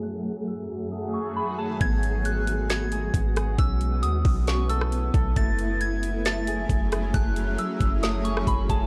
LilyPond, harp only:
\new Staff \with { instrumentName = "Harp" } { \time 4/4 \key fis \dorian \tempo 4 = 135 <a gis'>2 a8 gis'4 gis'8 | b2 b8 gis'4 gis'8 | cis'2 cis'8 a'4 a'8 | a2 a8 gis'4 gis'8 |
a2 a8 gis'4 gis'8 | }